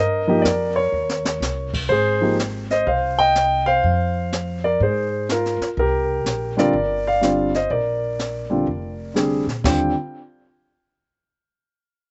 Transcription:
Already playing: G2 D#5
0.00 A#4
0.28 F3 A#3 D#4 G4
0.42 F2 A#4 D5, kick, snare, hi-hat pedal
0.76 A#4 C#5
0.92 D#2
1.09 snare
1.25 snare
1.40 C2, snare, hi-hat pedal
1.74 kick, crash
1.89 G#1 G#4 C5, brush sweep, kick
2.21 F3 A#3 D#4 G4
2.39 snare, hi-hat pedal
2.70 C5 D#5, snare
2.87 C2 C5 F5, brush sweep, kick
3.19 D#5 G5
3.35 snare, hi-hat pedal
3.66 C5 F5
3.84 F2, brush sweep, kick
4.32 snare, hi-hat pedal
4.64 A#4 D5
4.80 G#2 G#4 C5, brush sweep, kick
5.29 F4 A#4, snare, hi-hat pedal
5.45 snare
5.61 muted upright bass stroke, snare
5.77 C2 G4 A#4, brush sweep, kick
6.25 A#1, snare, hi-hat pedal
6.57 D3 G3 C4 F4 A#4 D5, snare
6.73 G1, brush sweep, kick
7.07 D5 F5
7.21 D3 G3 C4 F4, snare, hi-hat pedal
7.54 C5 D#5, snare
7.70 A#1 A#4 D5, brush sweep, kick
8.19 snare, hi-hat pedal
8.50 D3 G3 C4 F4
8.67 F1, brush sweep, kick
9.14 D3 G3 C4 G#4, snare, hi-hat pedal
9.47 A#2, snare
9.64 D#2 D3 G3 C4 F4 G5, kick, snare, crash

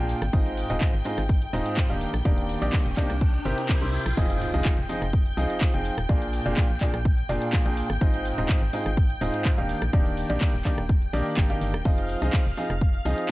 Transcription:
Already playing: A#1 A#2 A#3 D4 F4 G#4 G5 G6
0.09 open hi-hat, tambourine
0.22 G#1, cross-stick, closed hi-hat, tambourine, shaker
0.33 G#1 G#2 C4 D#4 F4 G#4 D#5, kick, tambourine, riser, shaker
0.46 closed hi-hat, tambourine, shaker
0.57 open hi-hat, tambourine
0.70 D#1 G#2 C4 D#4 F4 G#4 D#5, closed hi-hat, tambourine, shaker
0.81 kick, clap, tambourine, shaker
0.94 G#1, tambourine, shaker
1.04 G#2 C4 D#4 F4 G#4 D#5, open hi-hat, tambourine
1.18 G#1, cross-stick, closed hi-hat, tambourine, shaker
1.29 kick, tambourine, shaker
1.42 closed hi-hat, tambourine, shaker
1.53 D#1 G#2 C4 D#4 F4 G#4 D#5, open hi-hat, tambourine
1.66 closed hi-hat, tambourine, shaker
1.77 kick, clap, tambourine, shaker
1.90 D#1 D#3 A#3 D4 D#4 G4 F5, closed hi-hat, tambourine, shaker
2.01 open hi-hat, tambourine
2.14 A#1, cross-stick, closed hi-hat, tambourine, shaker
2.25 D#1 D#3 A#3 D4 D#4 G4 D5, kick, tambourine, shaker
2.37 closed hi-hat, tambourine, shaker
2.49 open hi-hat, tambourine
2.62 A#1 D#3 A#3 D4 D#4 G4 D5, closed hi-hat, tambourine, shaker
2.72 kick, clap, tambourine, shaker
2.86 D#1, closed hi-hat, tambourine, shaker
2.97 C3 A#3 D4 D#4 G4 D5, kick, clap, open hi-hat, tambourine
3.10 C2, cross-stick, closed hi-hat, tambourine, shaker
3.21 kick, tambourine, shaker
3.34 closed hi-hat, tambourine, shaker
3.45 G1 C3 E4 G4 A#4 C5 G5, open hi-hat, tambourine
3.58 closed hi-hat, tambourine, shaker
3.69 kick, clap, tambourine, shaker
3.81 C2 C3 E4 G4 A#4 C5 C6, closed hi-hat, tambourine, shaker
3.93 open hi-hat, tambourine
4.06 A#1, cross-stick, closed hi-hat, shaker
4.17 F1 F3 C4 D#4 F4 G#4 D#5 G5 G6, kick, crash, impact, shaker
4.30 closed hi-hat, shaker
4.41 open hi-hat, shaker
4.54 C2 F3 C4 D#4 F4 G#4 D#5, closed hi-hat, shaker
4.65 kick, clap, shaker
4.78 F1, shaker
4.89 F3 C4 D#4 F4 G#4 D#5, open hi-hat, shaker
5.02 F1, cross-stick, closed hi-hat, shaker
5.13 kick, shaker
5.26 closed hi-hat, shaker
5.37 C2 F3 C4 D#4 F4 G#4 D#5, open hi-hat, shaker
5.50 closed hi-hat, shaker
5.61 kick, clap, shaker
5.74 F1 F3 C4 D#4 F4 G#4 G5, closed hi-hat, shaker
5.85 open hi-hat, shaker
5.98 D#1, cross-stick, closed hi-hat, shaker
6.09 A#1 A#2 A#3 D4 F4 G#4 D5, kick, shaker
6.22 closed hi-hat, shaker
6.33 open hi-hat, shaker
6.46 F1 A#2 A#3 D4 F4 G#4 D5, closed hi-hat, shaker
6.57 kick, clap, shaker
6.70 A#1, shaker
6.81 A#2 A#3 D4 F4 G#4 D5, kick, clap, open hi-hat, shaker
6.94 A#1, cross-stick, closed hi-hat, shaker
7.05 kick, shaker
7.18 closed hi-hat, shaker
7.29 F1 A#2 A#3 D4 F4 G#4 D5, open hi-hat, shaker
7.42 closed hi-hat, shaker
7.53 kick, clap, shaker
7.66 A#1 A#2 A#3 D4 F4 G#4 G5, closed hi-hat, shaker
7.77 open hi-hat, shaker
7.90 G#1, cross-stick, closed hi-hat, shaker
8.01 G#1 G#2 C4 D#4 F4 G#4 D#5, kick, shaker
8.14 closed hi-hat, shaker
8.25 open hi-hat, shaker
8.38 D#1 G#2 C4 D#4 F4 G#4 D#5, closed hi-hat, shaker
8.49 kick, clap, shaker
8.62 G#1, shaker
8.73 G#2 C4 D#4 F4 G#4 D#5, open hi-hat, shaker
8.86 G#1, cross-stick, closed hi-hat, shaker
8.97 kick, shaker
9.10 closed hi-hat, shaker
9.21 D#1 G#2 C4 D#4 F4 G#4 D#5, open hi-hat, shaker
9.34 closed hi-hat, shaker
9.45 kick, clap, shaker
9.58 D#1 D#3 A#3 D4 D#4 G4 F5, closed hi-hat, shaker
9.69 open hi-hat, shaker
9.82 A#1, cross-stick, closed hi-hat, shaker
9.93 D#1 D#3 A#3 D4 D#4 G4 D5, kick, shaker
10.06 closed hi-hat, shaker
10.17 open hi-hat, shaker
10.30 A#1 D#3 A#3 D4 D#4 G4 D5, closed hi-hat, shaker
10.41 kick, clap, shaker
10.54 D#1, shaker
10.65 D#3 A#3 D4 D#4 G4 D5, kick, clap, open hi-hat, shaker
10.78 D#1, cross-stick, closed hi-hat, shaker
10.89 kick, shaker
11.02 closed hi-hat, shaker
11.13 A#1 D#3 A#3 D4 D#4 G4 D5, open hi-hat, shaker
11.26 closed hi-hat, shaker
11.37 G1, kick, clap, shaker
11.50 D#3 A#3 D4 D#4 G4 F5, closed hi-hat, shaker
11.61 G1, open hi-hat, shaker
11.74 D#1, cross-stick, closed hi-hat, shaker
11.85 F1 F3 C4 D#4 F4 G#4 D#5 F5 F6, kick, shaker
11.98 closed hi-hat, shaker
12.09 open hi-hat, shaker
12.22 C2 F3 C4 D#4 F4 G#4 D#5, closed hi-hat, shaker
12.33 kick, clap, shaker
12.46 F1, shaker
12.57 F3 C4 D#4 F4 G#4 D#5, open hi-hat, shaker
12.70 F1, cross-stick, closed hi-hat, shaker
12.81 kick, shaker
12.94 closed hi-hat, shaker
13.05 C2 F3 C4 D#4 F4 G#4 D#5, open hi-hat, shaker
13.18 closed hi-hat, shaker

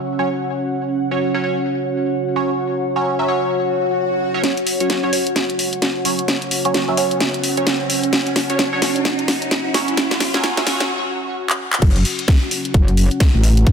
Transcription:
Already playing: C#4 F#4 C#5 F#5
0.19 F#3 C#4 C#5
1.11 F#3 C#4 C#5
1.34 F#3 C#4 C#5
1.44 F#3 C#4 C#5
2.36 F#3 C#4 C#5
2.96 F#3 C#4 C#5
3.19 F#3 C#4 E5
3.28 F#3 C#4 C#5
3.51 swell
4.34 F#3 C#4 C#5
4.44 C#4 F#4 F#5, snare, closed hi-hat, riser
4.57 closed hi-hat
4.67 open hi-hat
4.80 F#3 C#4 C#5, closed hi-hat
4.90 snare, closed hi-hat
5.04 F#3 C#4 C#5
5.13 F#3 C#4 C#5, open hi-hat
5.27 closed hi-hat
5.36 snare, closed hi-hat
5.50 closed hi-hat
5.59 open hi-hat
5.73 closed hi-hat
5.82 snare, closed hi-hat
6.05 F#3 C#4 C#5, open hi-hat
6.19 closed hi-hat
6.28 snare, closed hi-hat
6.42 closed hi-hat
6.51 open hi-hat
6.65 F#3 C#4 C#5, closed hi-hat
6.74 snare, closed hi-hat
6.88 F#3 C#4 E5
6.97 F#3 C#4 C#5, open hi-hat
7.11 closed hi-hat
7.20 snare, closed hi-hat
7.34 closed hi-hat
7.44 open hi-hat
7.57 F#3 C#4 C#5, closed hi-hat
7.67 snare, closed hi-hat
7.90 open hi-hat
8.04 closed hi-hat
8.13 snare, closed hi-hat
8.27 closed hi-hat
8.36 snare, open hi-hat
8.50 F#3 C#4 C#5, closed hi-hat
8.59 snare, closed hi-hat
8.73 F#3 C#4 C#5
8.82 F#3 C#4 C#5, snare, open hi-hat
8.96 closed hi-hat
9.05 snare, closed hi-hat
9.19 closed hi-hat
9.28 snare, open hi-hat
9.42 closed hi-hat
9.51 snare, closed hi-hat
9.74 F#3 C#4 C#5, snare, open hi-hat
9.88 closed hi-hat
9.97 snare, closed hi-hat
10.11 snare, closed hi-hat
10.20 snare, open hi-hat
10.34 F#3 C#4 C#5, snare, closed hi-hat
10.44 snare, closed hi-hat
10.57 F#3 C#4 E5, snare, closed hi-hat
10.67 F#3 C#4 C#5, snare, open hi-hat
10.80 snare, closed hi-hat
11.50 clap
11.73 clap
11.82 F#1 C#4 F#4 F#5, kick, closed hi-hat, crash
11.96 closed hi-hat
12.05 open hi-hat
12.19 closed hi-hat
12.28 kick, snare, closed hi-hat
12.51 open hi-hat
12.65 closed hi-hat
12.74 F#1, kick, closed hi-hat
12.88 closed hi-hat
12.97 open hi-hat
13.11 closed hi-hat
13.20 kick, snare, closed hi-hat
13.34 A1
13.44 open hi-hat
13.57 closed hi-hat
13.67 kick, closed hi-hat

